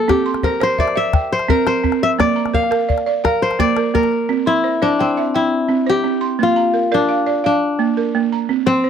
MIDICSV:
0, 0, Header, 1, 4, 480
1, 0, Start_track
1, 0, Tempo, 350672
1, 115, Time_signature, 12, 3, 24, 8
1, 12180, End_track
2, 0, Start_track
2, 0, Title_t, "Balafon"
2, 0, Program_c, 0, 12
2, 110, Note_on_c, 0, 60, 81
2, 352, Note_on_c, 0, 84, 66
2, 592, Note_off_c, 0, 60, 0
2, 595, Note_on_c, 0, 72, 72
2, 810, Note_off_c, 0, 72, 0
2, 826, Note_on_c, 0, 72, 84
2, 1073, Note_off_c, 0, 84, 0
2, 1073, Note_on_c, 0, 76, 71
2, 1292, Note_off_c, 0, 76, 0
2, 1309, Note_on_c, 0, 76, 78
2, 1310, Note_off_c, 0, 72, 0
2, 1552, Note_on_c, 0, 79, 69
2, 1791, Note_off_c, 0, 76, 0
2, 2032, Note_on_c, 0, 60, 83
2, 2272, Note_off_c, 0, 79, 0
2, 2500, Note_off_c, 0, 60, 0
2, 2517, Note_on_c, 0, 60, 73
2, 2992, Note_on_c, 0, 58, 88
2, 2995, Note_off_c, 0, 60, 0
2, 3228, Note_on_c, 0, 82, 60
2, 3470, Note_on_c, 0, 70, 67
2, 3473, Note_off_c, 0, 58, 0
2, 3692, Note_off_c, 0, 70, 0
2, 3708, Note_on_c, 0, 70, 85
2, 3950, Note_on_c, 0, 74, 69
2, 3951, Note_off_c, 0, 82, 0
2, 4178, Note_off_c, 0, 74, 0
2, 4191, Note_off_c, 0, 70, 0
2, 4194, Note_on_c, 0, 74, 74
2, 4433, Note_on_c, 0, 77, 65
2, 4674, Note_off_c, 0, 74, 0
2, 4915, Note_on_c, 0, 58, 81
2, 5154, Note_off_c, 0, 77, 0
2, 5163, Note_on_c, 0, 70, 68
2, 5377, Note_off_c, 0, 58, 0
2, 5393, Note_on_c, 0, 58, 68
2, 5873, Note_on_c, 0, 60, 79
2, 5874, Note_off_c, 0, 58, 0
2, 5879, Note_off_c, 0, 70, 0
2, 6107, Note_on_c, 0, 84, 59
2, 6350, Note_on_c, 0, 72, 66
2, 6354, Note_off_c, 0, 60, 0
2, 6577, Note_off_c, 0, 72, 0
2, 6593, Note_on_c, 0, 72, 79
2, 6596, Note_on_c, 0, 76, 65
2, 6832, Note_off_c, 0, 84, 0
2, 6833, Note_on_c, 0, 79, 62
2, 7064, Note_off_c, 0, 76, 0
2, 7075, Note_off_c, 0, 72, 0
2, 7081, Note_on_c, 0, 76, 65
2, 7299, Note_off_c, 0, 79, 0
2, 7316, Note_on_c, 0, 79, 60
2, 7559, Note_off_c, 0, 76, 0
2, 7782, Note_on_c, 0, 60, 73
2, 8029, Note_on_c, 0, 72, 67
2, 8037, Note_off_c, 0, 79, 0
2, 8248, Note_off_c, 0, 60, 0
2, 8265, Note_on_c, 0, 60, 74
2, 8500, Note_on_c, 0, 84, 67
2, 8746, Note_on_c, 0, 58, 76
2, 8751, Note_off_c, 0, 60, 0
2, 8753, Note_off_c, 0, 72, 0
2, 8983, Note_on_c, 0, 82, 61
2, 8989, Note_off_c, 0, 84, 0
2, 9220, Note_on_c, 0, 70, 62
2, 9232, Note_off_c, 0, 58, 0
2, 9453, Note_off_c, 0, 70, 0
2, 9466, Note_on_c, 0, 74, 67
2, 9470, Note_on_c, 0, 70, 80
2, 9700, Note_on_c, 0, 77, 64
2, 9710, Note_off_c, 0, 82, 0
2, 9927, Note_off_c, 0, 74, 0
2, 9944, Note_on_c, 0, 74, 72
2, 9954, Note_off_c, 0, 70, 0
2, 10168, Note_off_c, 0, 77, 0
2, 10184, Note_on_c, 0, 77, 68
2, 10431, Note_off_c, 0, 74, 0
2, 10663, Note_on_c, 0, 58, 79
2, 10910, Note_off_c, 0, 77, 0
2, 10912, Note_on_c, 0, 70, 71
2, 11135, Note_off_c, 0, 58, 0
2, 11152, Note_on_c, 0, 58, 77
2, 11395, Note_on_c, 0, 82, 67
2, 11623, Note_on_c, 0, 60, 82
2, 11634, Note_off_c, 0, 58, 0
2, 11634, Note_off_c, 0, 70, 0
2, 11857, Note_on_c, 0, 84, 62
2, 11875, Note_off_c, 0, 82, 0
2, 12100, Note_on_c, 0, 72, 66
2, 12109, Note_off_c, 0, 60, 0
2, 12180, Note_off_c, 0, 72, 0
2, 12180, Note_off_c, 0, 84, 0
2, 12180, End_track
3, 0, Start_track
3, 0, Title_t, "Kora"
3, 0, Program_c, 1, 46
3, 0, Note_on_c, 1, 69, 82
3, 128, Note_on_c, 1, 67, 77
3, 603, Note_on_c, 1, 70, 73
3, 685, Note_off_c, 1, 69, 0
3, 864, Note_on_c, 1, 72, 88
3, 1092, Note_on_c, 1, 74, 88
3, 1328, Note_on_c, 1, 76, 87
3, 1808, Note_off_c, 1, 72, 0
3, 1814, Note_on_c, 1, 72, 95
3, 2045, Note_off_c, 1, 70, 0
3, 2050, Note_on_c, 1, 70, 89
3, 2061, Note_off_c, 1, 67, 0
3, 2280, Note_off_c, 1, 72, 0
3, 2286, Note_on_c, 1, 72, 98
3, 2608, Note_off_c, 1, 74, 0
3, 2743, Note_off_c, 1, 76, 0
3, 2779, Note_on_c, 1, 76, 102
3, 2861, Note_off_c, 1, 76, 0
3, 3011, Note_on_c, 1, 74, 97
3, 3483, Note_on_c, 1, 77, 87
3, 3793, Note_off_c, 1, 70, 0
3, 3911, Note_off_c, 1, 72, 0
3, 4442, Note_on_c, 1, 70, 80
3, 4528, Note_off_c, 1, 74, 0
3, 4686, Note_on_c, 1, 72, 89
3, 4849, Note_off_c, 1, 77, 0
3, 4924, Note_on_c, 1, 74, 99
3, 5397, Note_off_c, 1, 70, 0
3, 5403, Note_on_c, 1, 70, 72
3, 6119, Note_on_c, 1, 64, 91
3, 6312, Note_off_c, 1, 72, 0
3, 6440, Note_off_c, 1, 74, 0
3, 6603, Note_on_c, 1, 62, 86
3, 6851, Note_on_c, 1, 60, 75
3, 7145, Note_off_c, 1, 70, 0
3, 7323, Note_off_c, 1, 64, 0
3, 7329, Note_on_c, 1, 64, 83
3, 8070, Note_on_c, 1, 67, 100
3, 8801, Note_on_c, 1, 65, 86
3, 8883, Note_off_c, 1, 64, 0
3, 8902, Note_off_c, 1, 62, 0
3, 9315, Note_off_c, 1, 60, 0
3, 9504, Note_on_c, 1, 62, 85
3, 10003, Note_off_c, 1, 67, 0
3, 10207, Note_off_c, 1, 62, 0
3, 10212, Note_on_c, 1, 62, 74
3, 10872, Note_off_c, 1, 65, 0
3, 11862, Note_on_c, 1, 60, 96
3, 12180, Note_off_c, 1, 60, 0
3, 12180, Note_off_c, 1, 62, 0
3, 12180, End_track
4, 0, Start_track
4, 0, Title_t, "Calabash"
4, 128, Note_on_c, 9, 36, 67
4, 128, Note_on_c, 9, 38, 64
4, 248, Note_off_c, 9, 38, 0
4, 248, Note_on_c, 9, 38, 20
4, 265, Note_off_c, 9, 36, 0
4, 385, Note_off_c, 9, 38, 0
4, 471, Note_on_c, 9, 38, 49
4, 591, Note_on_c, 9, 36, 65
4, 608, Note_off_c, 9, 38, 0
4, 728, Note_off_c, 9, 36, 0
4, 842, Note_on_c, 9, 38, 67
4, 979, Note_off_c, 9, 38, 0
4, 1076, Note_on_c, 9, 36, 68
4, 1199, Note_on_c, 9, 38, 53
4, 1213, Note_off_c, 9, 36, 0
4, 1336, Note_off_c, 9, 38, 0
4, 1553, Note_on_c, 9, 36, 71
4, 1553, Note_on_c, 9, 38, 64
4, 1690, Note_off_c, 9, 36, 0
4, 1690, Note_off_c, 9, 38, 0
4, 1907, Note_on_c, 9, 38, 51
4, 2044, Note_off_c, 9, 38, 0
4, 2044, Note_on_c, 9, 36, 63
4, 2161, Note_on_c, 9, 38, 23
4, 2181, Note_off_c, 9, 36, 0
4, 2281, Note_off_c, 9, 38, 0
4, 2281, Note_on_c, 9, 38, 71
4, 2418, Note_off_c, 9, 38, 0
4, 2521, Note_on_c, 9, 36, 64
4, 2631, Note_on_c, 9, 38, 52
4, 2658, Note_off_c, 9, 36, 0
4, 2768, Note_off_c, 9, 38, 0
4, 3007, Note_on_c, 9, 36, 67
4, 3007, Note_on_c, 9, 38, 69
4, 3144, Note_off_c, 9, 36, 0
4, 3144, Note_off_c, 9, 38, 0
4, 3362, Note_on_c, 9, 38, 50
4, 3479, Note_on_c, 9, 36, 73
4, 3499, Note_off_c, 9, 38, 0
4, 3605, Note_on_c, 9, 38, 22
4, 3616, Note_off_c, 9, 36, 0
4, 3722, Note_off_c, 9, 38, 0
4, 3722, Note_on_c, 9, 38, 63
4, 3844, Note_off_c, 9, 38, 0
4, 3844, Note_on_c, 9, 38, 21
4, 3966, Note_on_c, 9, 36, 68
4, 3980, Note_off_c, 9, 38, 0
4, 4074, Note_on_c, 9, 38, 50
4, 4103, Note_off_c, 9, 36, 0
4, 4208, Note_off_c, 9, 38, 0
4, 4208, Note_on_c, 9, 38, 20
4, 4345, Note_off_c, 9, 38, 0
4, 4448, Note_on_c, 9, 36, 62
4, 4448, Note_on_c, 9, 38, 69
4, 4584, Note_off_c, 9, 36, 0
4, 4584, Note_off_c, 9, 38, 0
4, 4685, Note_on_c, 9, 38, 20
4, 4802, Note_off_c, 9, 38, 0
4, 4802, Note_on_c, 9, 38, 52
4, 4919, Note_on_c, 9, 36, 64
4, 4939, Note_off_c, 9, 38, 0
4, 5043, Note_on_c, 9, 38, 22
4, 5056, Note_off_c, 9, 36, 0
4, 5154, Note_off_c, 9, 38, 0
4, 5154, Note_on_c, 9, 38, 66
4, 5291, Note_off_c, 9, 38, 0
4, 5407, Note_on_c, 9, 36, 64
4, 5521, Note_on_c, 9, 38, 55
4, 5544, Note_off_c, 9, 36, 0
4, 5637, Note_off_c, 9, 38, 0
4, 5637, Note_on_c, 9, 38, 22
4, 5773, Note_off_c, 9, 38, 0
4, 12180, End_track
0, 0, End_of_file